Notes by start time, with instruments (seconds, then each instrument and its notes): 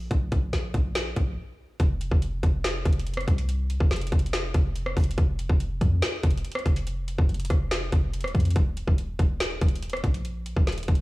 0.11 808-style bass A#1, kick, closed hi-hat
0.32 808-style bass A#1, kick, closed hi-hat
0.53 808-style bass A#1, snare, closed hi-hat
0.74 808-style bass A#1, kick, closed hi-hat
0.95 snare, closed hi-hat
1.16 808-style bass A#1, kick, closed hi-hat
1.80 808-style bass F1, kick, closed hi-hat
2.01 closed hi-hat
2.11 808-style bass F1, kick
2.22 closed hi-hat
2.43 808-style bass F1, kick, closed hi-hat
2.64 snare, closed hi-hat
2.85 808-style bass F1, kick, closed hi-hat
2.93 closed hi-hat
3.00 closed hi-hat
3.07 closed hi-hat
3.14 cross-stick, closed hi-hat
3.21 closed hi-hat
3.28 808-style bass C2, kick, closed hi-hat
3.38 closed hi-hat
3.49 closed hi-hat
3.70 closed hi-hat
3.80 808-style bass F1, kick
3.91 808-style bass F1, snare, closed hi-hat
3.96 closed hi-hat
4.01 closed hi-hat
4.07 closed hi-hat
4.12 808-style bass F1, kick, closed hi-hat
4.19 closed hi-hat
4.26 closed hi-hat
4.33 snare, closed hi-hat
4.54 808-style bass F1, kick, closed hi-hat
4.76 closed hi-hat
4.86 cross-stick
4.97 808-style bass F1, kick, closed hi-hat, open hi-hat
5.04 closed hi-hat
5.11 closed hi-hat
5.18 808-style bass F1, kick, closed hi-hat
5.39 closed hi-hat
5.49 808-style bass F1, kick
5.60 closed hi-hat
5.81 808-style bass F2, kick, closed hi-hat
6.02 snare, closed hi-hat
6.23 808-style bass F1, kick, closed hi-hat
6.31 closed hi-hat
6.38 closed hi-hat
6.45 closed hi-hat
6.52 cross-stick, closed hi-hat
6.59 closed hi-hat
6.66 808-style bass F1, kick, closed hi-hat
6.76 closed hi-hat
6.87 closed hi-hat
7.08 closed hi-hat
7.18 808-style bass F1, kick
7.29 808-style bass F1, closed hi-hat
7.34 closed hi-hat
7.40 closed hi-hat
7.45 closed hi-hat
7.50 808-style bass F1, kick, cross-stick, closed hi-hat
7.71 snare, closed hi-hat
7.92 808-style bass F1, kick, closed hi-hat
8.14 closed hi-hat
8.21 808-style bass D#1, cross-stick, closed hi-hat
8.28 closed hi-hat
8.35 808-style bass F2, kick, closed hi-hat
8.40 closed hi-hat
8.45 closed hi-hat
8.51 closed hi-hat
8.56 808-style bass D#1, kick, closed hi-hat
8.77 closed hi-hat
8.87 808-style bass D#1, kick
8.98 closed hi-hat
9.19 808-style bass D#1, kick, closed hi-hat
9.40 snare, closed hi-hat
9.61 808-style bass D#1, kick, closed hi-hat
9.68 closed hi-hat
9.76 closed hi-hat
9.83 closed hi-hat
9.90 cross-stick, closed hi-hat
9.97 closed hi-hat
10.04 808-style bass A#1, kick, closed hi-hat
10.14 closed hi-hat
10.25 closed hi-hat
10.46 closed hi-hat
10.57 808-style bass D#1, kick
10.67 808-style bass D#1, snare, closed hi-hat
10.72 closed hi-hat
10.78 closed hi-hat
10.83 closed hi-hat
10.88 808-style bass D#1, kick, closed hi-hat
10.95 closed hi-hat